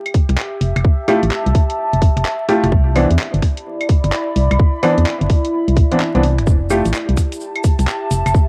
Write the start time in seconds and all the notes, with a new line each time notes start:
Already playing: G4 E5
0.06 closed hi-hat, claves
0.14 kick, open hi-hat
0.29 C2, finger snap, closed hi-hat
0.38 clap
0.45 A5
0.61 F1, open hi-hat
0.76 F1, finger snap, closed hi-hat, claves
0.85 kick
1.08 A3 E4 F4 G4, open hi-hat, claves
1.23 A1, closed hi-hat
1.31 clap
1.46 C2, closed hi-hat
1.55 kick, open hi-hat
1.70 closed hi-hat
1.93 F1, closed hi-hat
2.02 kick, open hi-hat
2.17 F1, finger snap, closed hi-hat
2.25 clap
2.49 A3 E4 F4 G4, open hi-hat
2.64 F1, finger snap, closed hi-hat
2.72 C2 E4, kick
2.89 D5
2.95 E3 B3 C4 D4, open hi-hat, claves
3.10 E2, closed hi-hat
3.19 clap
3.27 B5
3.34 G1, closed hi-hat
3.42 finger snap, kick, open hi-hat
3.57 closed hi-hat
3.81 closed hi-hat, claves
3.89 kick, open hi-hat
4.04 G1, finger snap, closed hi-hat
4.12 clap
4.36 C2, open hi-hat
4.51 C2, finger snap, closed hi-hat, claves
4.59 kick
4.83 E3 B3 C4 D4, open hi-hat, claves
4.98 E2, closed hi-hat
5.06 clap
5.21 G1, closed hi-hat
5.30 kick, open hi-hat
5.45 closed hi-hat
5.68 C2, closed hi-hat
5.77 kick, open hi-hat
5.92 E3 B3 C4 D4, finger snap, closed hi-hat
6.00 clap
6.15 C2 E3 B3 C4 D4, closed hi-hat
6.23 open hi-hat
6.38 G1, finger snap, closed hi-hat
6.47 F1 G4, kick, shaker
6.70 A3 E4 F4 G4, open hi-hat, claves, shaker
6.85 A1, closed hi-hat, shaker
6.92 A5, clap, shaker
7.09 C2 E5, closed hi-hat
7.17 finger snap, kick, open hi-hat, shaker
7.32 closed hi-hat, shaker
7.41 shaker
7.56 closed hi-hat, claves
7.64 kick, open hi-hat, shaker
7.79 C2, finger snap, closed hi-hat, shaker
7.88 clap, shaker
8.11 F1, open hi-hat, shaker
8.26 F1, finger snap, closed hi-hat, claves, shaker
8.34 kick, shaker